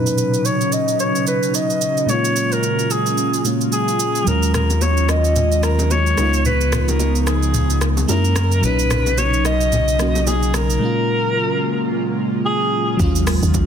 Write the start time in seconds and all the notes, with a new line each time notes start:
Already playing: A#2 B2 C#3 F#3 C#4 D#4 B4
0.06 shaker
0.18 shaker
0.34 shaker
0.45 C#5, shaker
0.61 shaker
0.72 D#5, shaker
0.88 shaker
1.00 C#5, shaker
1.16 shaker
1.27 B4, shaker
1.43 shaker
1.54 D#5, shaker
1.70 shaker
1.81 shaker
1.97 shaker
2.06 A#2 G#3 A#3 F4 C#5, shaker
2.11 C#4 F4
2.25 shaker
2.36 shaker
2.52 A#4, shaker
2.63 shaker
2.79 shaker
2.91 G#4, shaker
3.06 shaker
3.18 shaker
3.34 shaker
3.44 A#2 G#3 A#3 C#4 F4, shaker
3.61 shaker
3.72 G#4, shaker
3.88 shaker
4.00 shaker
4.15 shaker
4.24 D#2 D#3 F#3 G#3 C#4 A#4, low conga, shaker
4.28 C#4 F4
4.43 shaker
4.54 A#4, cross-stick, low bongo, low conga, shaker
4.70 low bongo, shaker
4.81 C#5, high bongo, shaker
4.97 shaker
5.09 D#5, cross-stick, shaker
5.24 shaker
5.36 low conga, shaker
5.52 shaker
5.63 A#4, cross-stick, shaker
5.79 low bongo, shaker
5.91 C#5, high bongo, shaker
6.06 shaker
6.15 C#2 C#3 F3 G#3 B3 D#4, cross-stick, low bongo, shaker
6.19 D#4 F4
6.33 shaker
6.45 B4, low conga, shaker
6.61 shaker
6.72 cross-stick, low bongo, low conga, shaker
6.88 A#4, low bongo, shaker
7.00 high bongo, shaker
7.15 shaker
7.22 A#4
7.27 G#4, cross-stick, shaker
7.43 shaker
7.54 low conga, shaker
7.70 shaker
7.81 cross-stick, shaker
7.97 low bongo, shaker
8.08 F#2 C#3 F#3 G#3 A#3 C#4 E4 A#4, high bongo, shaker
8.25 shaker
8.36 cross-stick, low bongo, shaker
8.52 shaker
8.61 B1 A#2 F#3 D#4 B4, low conga, shaker
8.65 C#4 D#4
8.79 shaker
8.91 cross-stick, low bongo, low conga, shaker
9.06 low bongo, shaker
9.18 C#5, high bongo, shaker
9.34 shaker
9.45 D#5, cross-stick, shaker
9.61 shaker
9.72 low conga, shaker
9.88 shaker
9.98 F#3 A#3 C#4 F#4, cross-stick, shaker
10.15 low bongo, shaker
10.27 G#4, high bongo, shaker
10.43 shaker
10.54 A#4, cross-stick, low bongo, shaker
10.70 shaker
10.79 A#2 G#3 A#3 F4
10.84 C#4 F4
12.46 G#4
12.97 D#2 C#3 F#3 G#3 D#4 F4, kick, impact, shaker
13.01 C#4 F4
13.15 shaker
13.27 cross-stick, open hi-hat, shaker
13.43 D#2, shaker
13.54 kick, shaker